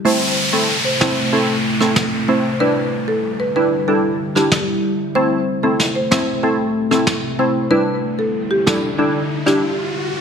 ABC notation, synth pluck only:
X:1
M:4/4
L:1/16
Q:1/4=94
K:Am
V:1 name="Synth pluck"
[A,CE]3 [A,CE] z2 [A,CE] z [A,CE]3 [A,CE] z2 [A,CE] z | [G,DE]4 z2 [G,DE] z [G,DE]3 [G,DE] z4 | [A,CE]3 [A,CE] z2 [A,CE] z [A,CE]3 [A,CE] z2 [A,CE] z | [G,DE]4 z2 [G,DE] z [G,DE]3 [G,DE] z4 |]